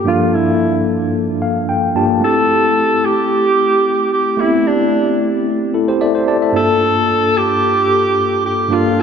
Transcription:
0.04 G2 F3 A#3 D4 F4
0.09 A4
0.35 E4
1.42 F5
1.69 G5
1.95 G2 A#3 D4 F4 G4 A5
2.20 A3 C4 E4 A4
2.25 G4
3.05 G4
4.13 G4
4.37 A3 B3 E4
4.42 C4 G4
4.67 D4
5.74 E4 A4
5.88 G4 C5
6.01 A4 D5 E5
6.15 G4 C5
6.28 A4 D5 A5
6.42 A4 E5
6.52 G2 A#3 D4 F4 A4
6.57 A4
7.37 G4
8.46 G4
8.69 G2 A#3 D4 F4
8.74 A4

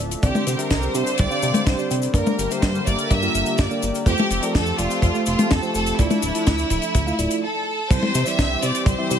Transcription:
Already playing: F3 A3 D4 A4 E5
0.00 D1
0.11 closed hi-hat, cabasa
0.23 C2 D3 G3 C4 D4 G4 C5 D5, kick, closed hi-hat, cabasa
0.35 high tom, cabasa
0.47 C3, closed hi-hat, cabasa
0.59 C4 D4 G4 A#4 E5, closed hi-hat, cabasa
0.70 C2, kick, snare, closed hi-hat, cabasa
0.82 cabasa
0.95 C3 C4 D4 G4 C5 E5, closed hi-hat, cabasa
1.06 closed hi-hat, cabasa
1.18 C2 D5, kick, closed hi-hat, cabasa
1.31 C4 D4 G4 F5, cabasa
1.42 C3, closed hi-hat, cabasa
1.54 closed hi-hat, high tom, cabasa
1.67 C2 C5, kick, snare, closed hi-hat, cabasa
1.79 C4 D4 G4 D5, cabasa
1.91 C3, closed hi-hat, cabasa
2.02 closed hi-hat, cabasa
2.14 G2 D3 A#3 D4 G4 A#4 D5, kick, closed hi-hat, cabasa
2.27 high tom, cabasa
2.39 G1, closed hi-hat, cabasa
2.51 A#3 D4 G4 C5 E5, closed hi-hat, cabasa
2.62 G2, kick, snare, closed hi-hat, cabasa
2.75 cabasa
2.87 G1 A#3 D4 G4 D5 E5, kick, closed hi-hat, cabasa
2.98 closed hi-hat, cabasa
3.10 G2 E5, kick, closed hi-hat, cabasa
3.22 A#3 D4 F4 G4, cabasa
3.35 G1, closed hi-hat, cabasa
3.46 closed hi-hat, cabasa
3.58 G2 D5, kick, snare, closed hi-hat, cabasa
3.71 A#3 D4 G4 D5, cabasa
3.82 G1, closed hi-hat, cabasa
3.95 closed hi-hat, cabasa
4.06 F2 F3 A3 C4 F4 G4 A4 C5, kick, closed hi-hat, cabasa
4.18 high tom, cabasa
4.30 F1, closed hi-hat, cabasa
4.43 A3 F4 G4 A#4 D5, closed hi-hat, cabasa
4.55 F2 A4, kick, snare, closed hi-hat, cabasa
4.66 cabasa
4.78 F1 A3 F4 G4 D5, closed hi-hat, cabasa
4.90 closed hi-hat, cabasa
5.02 F2, kick, closed hi-hat, cabasa
5.15 A3 F4 G4 F5, cabasa
5.26 F1 F4, closed hi-hat, cabasa
5.39 closed hi-hat, high tom, cabasa
5.50 F2 A4, kick, snare, closed hi-hat, cabasa
5.63 A3 F4 G4 C5, cabasa
5.75 F1 A4, closed hi-hat, cabasa
5.86 closed hi-hat, cabasa
5.99 D2 A3 D4 E4 F4 D5, kick, closed hi-hat, cabasa
6.11 closed hi-hat, high tom, cabasa
6.22 D1, closed hi-hat, cabasa
6.35 A3 E4 F4 E5, closed hi-hat, cabasa
6.46 D2, kick, snare, closed hi-hat, cabasa
6.58 closed hi-hat, cabasa
6.70 D1 F3 A3 E4 E5, kick, closed hi-hat, cabasa
6.82 closed hi-hat, cabasa
6.94 D2, kick, closed hi-hat, cabasa
7.07 A3 E4 F4 F5, cabasa
7.19 D1 A3 E4 F4 D5, closed hi-hat, cabasa
7.31 closed hi-hat, cabasa
7.43 A4
7.91 C2 E3 G3 C4 E4 G4 C5, kick, closed hi-hat, crash, cabasa
8.03 high tom
8.15 C3, closed hi-hat, cabasa
8.26 G3 C4 E4 D5 E5, closed hi-hat, cabasa
8.39 C2, kick, snare, closed hi-hat, cabasa
8.62 C3 G3 C4 E4 D5, closed hi-hat, cabasa
8.75 closed hi-hat, cabasa
8.86 C2 C5, kick, closed hi-hat, cabasa
8.99 G3 C4 E4 E5
9.11 C3 G3 C4 E4 C5, closed hi-hat, cabasa

